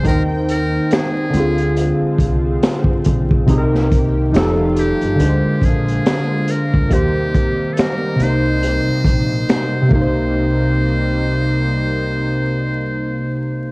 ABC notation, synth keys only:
X:1
M:4/4
L:1/8
Q:"Swing 16ths" 1/4=70
K:Cm
V:1 name="Synth keys"
[E,Ecg]3 [D,CFA]4- [D,CFA] | [C,CEAB]2 [F,EG=A]2 [D,_A,Dc]4 | [E,B,Gc]3 [C,B,Ec]4 [C,B,Ec]- | [C,B,Ec]8 |]